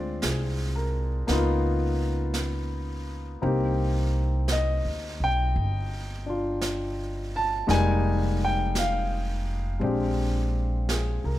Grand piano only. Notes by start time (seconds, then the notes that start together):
Already playing: G#3 C4 D4 F4 D5
0.23 G#4
0.75 A#4
1.27 A#3 B3 D#4
1.32 F4
3.42 A#3 C4 D#4 G4
4.52 D#5
5.24 G5
6.26 D4 F4
7.36 A5
7.67 G3 G#3 A#3 D#4 G#5
8.45 G5
8.79 F5
9.80 G#3 C4 D4
9.84 G4
10.90 G#4
11.25 A#4